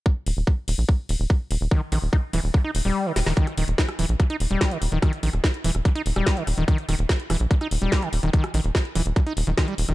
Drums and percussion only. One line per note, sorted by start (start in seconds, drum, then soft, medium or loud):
0.06 kick loud
0.26 open hi-hat loud
0.47 kick loud
0.68 open hi-hat loud
0.89 kick loud
1.09 open hi-hat loud
1.30 kick loud
1.51 open hi-hat loud
1.71 kick loud
1.92 open hi-hat loud
2.13 kick loud
2.33 open hi-hat loud
2.54 kick loud
2.75 open hi-hat loud
3.16 snare medium
3.16 open hi-hat loud
3.27 snare medium
3.37 kick loud
3.37 closed hi-hat medium
3.47 cross-stick soft
3.47 closed hi-hat medium
3.58 open hi-hat loud
3.68 closed hi-hat medium
3.78 kick loud
3.78 snare loud
3.78 closed hi-hat medium
3.89 cross-stick medium
3.89 closed hi-hat medium
3.99 open hi-hat loud
4.09 closed hi-hat medium
4.20 kick loud
4.20 cross-stick soft
4.20 closed hi-hat medium
4.30 closed hi-hat medium
4.40 open hi-hat loud
4.51 closed hi-hat medium
4.61 kick loud
4.61 cross-stick soft
4.61 snare loud
4.61 closed hi-hat medium
4.71 closed hi-hat medium
4.82 open hi-hat loud
4.92 closed hi-hat medium
5.02 kick loud
5.02 cross-stick medium
5.02 closed hi-hat medium
5.13 closed hi-hat soft
5.23 open hi-hat loud
5.33 cross-stick soft
5.33 closed hi-hat medium
5.44 kick loud
5.44 snare loud
5.44 closed hi-hat medium
5.54 closed hi-hat medium
5.64 open hi-hat loud
5.75 cross-stick soft
5.75 closed hi-hat soft
5.85 kick loud
5.85 closed hi-hat medium
5.95 closed hi-hat medium
6.06 open hi-hat loud
6.16 cross-stick medium
6.16 closed hi-hat medium
6.27 kick loud
6.27 snare loud
6.27 closed hi-hat medium
6.37 closed hi-hat medium
6.47 cross-stick soft
6.47 open hi-hat loud
6.58 closed hi-hat medium
6.68 kick loud
6.68 closed hi-hat medium
6.78 closed hi-hat soft
6.89 cross-stick soft
6.89 open hi-hat loud
6.99 closed hi-hat medium
7.09 kick loud
7.09 snare loud
7.09 closed hi-hat medium
7.20 closed hi-hat medium
7.30 cross-stick medium
7.30 open hi-hat loud
7.40 closed hi-hat soft
7.51 kick loud
7.51 closed hi-hat medium
7.61 cross-stick soft
7.61 closed hi-hat soft
7.71 open hi-hat loud
7.82 closed hi-hat medium
7.92 kick loud
7.92 snare loud
7.92 closed hi-hat medium
8.02 cross-stick soft
8.02 closed hi-hat medium
8.13 open hi-hat loud
8.23 closed hi-hat medium
8.33 kick loud
8.33 closed hi-hat medium
8.44 cross-stick medium
8.44 closed hi-hat soft
8.54 open hi-hat loud
8.64 closed hi-hat medium
8.75 kick loud
8.75 cross-stick soft
8.75 snare loud
8.75 closed hi-hat medium
8.85 closed hi-hat soft
8.95 open hi-hat loud
9.06 closed hi-hat soft
9.16 kick loud
9.16 cross-stick soft
9.16 closed hi-hat medium
9.27 closed hi-hat medium
9.37 open hi-hat loud
9.47 closed hi-hat soft
9.58 kick loud
9.58 cross-stick medium
9.58 snare loud
9.58 closed hi-hat medium
9.68 closed hi-hat medium
9.78 open hi-hat loud
9.89 cross-stick soft
9.89 closed hi-hat soft